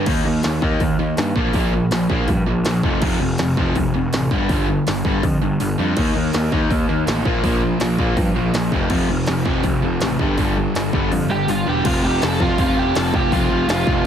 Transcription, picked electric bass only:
0.07 D#2
0.26 D#2
0.45 D#2
0.62 D#2
0.81 D#2
0.99 D#2
1.17 G2
1.36 A#1
1.54 A#1
1.91 A#1
2.10 A#1
2.28 G2
2.47 A#1
2.65 A#1
2.83 F1
3.02 F1
3.21 F1
3.40 F1
3.57 F1
3.76 F1
3.95 F1
4.14 A1
4.31 G1
4.50 G1
4.88 G1
5.04 G1
5.23 F2
5.42 G1
5.61 G1
5.79 F2
5.97 D#2
6.15 D#2
6.34 D#2
6.52 D#2
6.70 D#2
6.89 D#2
7.07 A1
7.26 A#1
7.44 A#1
7.81 A#1
7.99 A#1
8.17 G2
8.36 A#1
8.54 A#1
8.72 F1
8.90 F1
9.09 F1
9.28 F1
9.46 F1
9.64 F1
9.83 F1
10.01 A1
10.20 G1
10.38 G1
10.75 G1
10.93 G1
11.11 F2
11.30 G1
11.48 G1
11.67 E1
11.86 F1
12.03 F1
12.22 F1
12.58 F1
12.77 F1
12.96 F1
13.14 F1
13.32 F1
13.50 F1
13.68 F1
13.87 F1

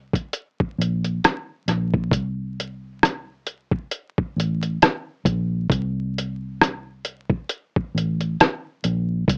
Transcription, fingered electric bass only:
Already playing: C2
0.78 A#1
1.68 A#1
2.12 C2
4.36 A1
5.26 A#1
5.70 C2
7.95 A1
8.85 A#1
9.28 C2

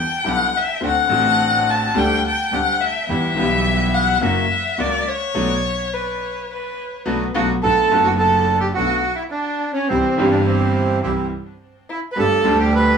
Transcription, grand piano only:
0.24 B1 B2 D3 G3 B3 E4
0.80 D2 D3 A3 C4 F#4
1.07 A1 A2 D3 A3 C4 F#4
1.94 D2 D3 G3 A3 G4
2.52 D2 D3 G3 A3 G4
3.09 E2 E3 G3 B3 G4
3.35 B1 B2 E3 G3 B3
3.39 G4
4.21 F#2 C#3 F#3 A#3 F#4
4.78 C#2 C#3 F#3 A#3 F#4
5.35 F#3 A3 B3
7.06 F#3 A3 B3
7.34 F#3 A3 B3
7.63 B1 B2 D3 A3 B3 F#4
7.89 F#1 F#2 D3 A3 B3
7.93 F#4
8.76 B1 B2 D3 A3 B3 F#4
9.90 C2 C3 E3 G3 C4 G4
10.17 G1 G2 E3 G3 C4 G4
11.04 C2 C3 E3 G3 C4 G4
12.16 G1 G2 D3 G3 A3 G4
12.43 D2 D3 G3 A3 G4

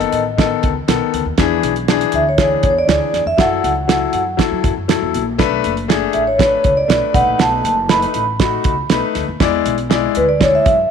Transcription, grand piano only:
Already playing: D#3 B3 A4
0.37 D#3 B3 A4
0.88 D#3 B3 A4
1.38 E3 D4 G#4
1.88 E3 D4 G#4
2.39 E3 D4 G#4
2.87 E3 D4 G#4
3.37 F#3 E4 A4
3.88 F#3 E4 A4
4.37 F#3 E4 A4
4.88 F#3 E4 A4
5.38 A3 D4 B4
5.88 A3 D4 G#4
6.38 A3 D4 B4
6.88 A3 D4 B4
7.13 A3 D#4 B4
7.89 A3 D#4 B4
8.40 A3 D#4 F#4
8.90 A3 D#4 B4
9.40 G#3 E4 D5
9.90 G#3 E4 D5
10.40 G#3 E4 D5

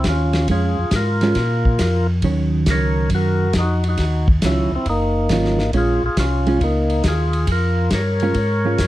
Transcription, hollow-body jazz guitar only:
0.50 G#3 C#4 F4
1.23 G#3 C#4 F4
2.24 D#3 F#3 C#4
4.44 D#3 F#3 C#4 F4
5.31 D#3 F#3 C#4 F4
5.74 G#3 C#4 F4
6.47 G#3 C#4 F4
8.23 G#3 C#4 F4
8.65 G#3 C#4 F4

